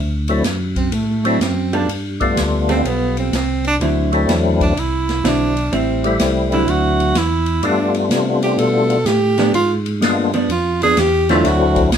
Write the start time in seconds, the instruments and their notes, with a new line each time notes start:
Already playing: tonewheel organ D2
0.28 tonewheel organ F#3 A3 C4 D4 E4, ride
0.44 tonewheel organ F#2, snare, hi-hat pedal, ride
0.76 tenor saxophone C4, kick, ride
0.92 tonewheel organ A2, tenor saxophone A3, ride
1.25 tonewheel organ F#3 A3 C4 D4 E4, tenor saxophone C4, ride
1.39 tonewheel organ F#2, tenor saxophone C4, snare, hi-hat pedal, ride
1.73 hollow-body jazz guitar G3 B3 F4 A4, tenor saxophone D4, ride
1.88 tonewheel organ G2, ride
2.20 tonewheel organ G3 A3 B3 D4 F4, kick, ride
2.36 tonewheel organ D2, snare, hi-hat pedal, ride
2.69 hollow-body jazz guitar G3 B3 F4 A4, tenor saxophone C4, ride
2.85 tonewheel organ B1, tenor saxophone B3, ride
3.17 tenor saxophone C4, ride
3.32 tonewheel organ C2, tenor saxophone C4, snare, hi-hat pedal, ride
3.64 tenor saxophone D4, ride
3.80 tonewheel organ D2, hollow-body jazz guitar D3 F#3 C4 E4, ride
4.12 tonewheel organ F#3 A3 C4 D4 E4, ride
4.27 tonewheel organ E2, snare, hi-hat pedal, ride
4.61 tenor saxophone D4, kick, ride
4.76 tonewheel organ C2, tenor saxophone E4, ride
5.09 snare, ride
5.23 tonewheel organ B1, hollow-body jazz guitar D3 F#3 C4 E4, snare, hi-hat pedal, ride
5.28 tenor saxophone D4
5.57 ride
5.72 tonewheel organ A1, hollow-body jazz guitar G3 C4 E4, tenor saxophone C4, ride
6.04 tonewheel organ G3 A3 C4 E4, ride
6.20 tonewheel organ C2, snare, hi-hat pedal, ride
6.52 hollow-body jazz guitar D3 F#3 C4 E4, tenor saxophone E4, ride
6.67 tonewheel organ D2, tenor saxophone F#4, ride
7.00 ride
7.15 tonewheel organ E2, tenor saxophone E4, snare, hi-hat pedal, ride
7.46 ride
7.62 tonewheel organ G2 G3 A3 B3 D4 F4, tenor saxophone D4, ride
7.94 ride
8.09 tonewheel organ C3, snare, hi-hat pedal, ride
8.43 tenor saxophone G4, ride
8.58 tonewheel organ B2, tenor saxophone A4, ride
8.90 ride
9.05 tonewheel organ A2, tenor saxophone G4, snare, hi-hat pedal, ride
9.38 hollow-body jazz guitar F3 B3 D4, snare, ride
9.53 tonewheel organ G#2, tenor saxophone F4, ride
9.86 ride
10.01 tonewheel organ G2 G#3 A#3 B3 D4 F4, snare, hi-hat pedal, ride
10.34 hollow-body jazz guitar F3 B3 D4, ride
10.49 tonewheel organ F2, tenor saxophone F4, ride
10.82 hollow-body jazz guitar F3 B3 D4, tenor saxophone G#4, ride
10.97 tonewheel organ E2, tenor saxophone G4, snare, hi-hat pedal, ride
11.29 hollow-body jazz guitar D3 F#3 C4 E4, tonewheel organ F#3 A3 C4 D4 E4, tenor saxophone F4, snare, ride
11.44 tonewheel organ D2, tenor saxophone F#4, snare, ride
11.76 kick, ride
11.92 tonewheel organ C2, snare, hi-hat pedal, ride